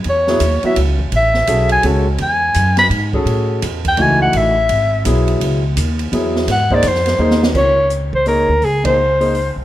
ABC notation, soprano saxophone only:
X:1
M:3/4
L:1/8
Q:"Swing" 1/4=168
K:Alyd
V:1 name="Soprano saxophone"
c3 e z2 | e3 g z2 | g3 b z2 | z3 =g ^g f |
e4 z2 | z6 | f =d ^B3 z | [K:Db] d2 z c B2 |
A c4 z |]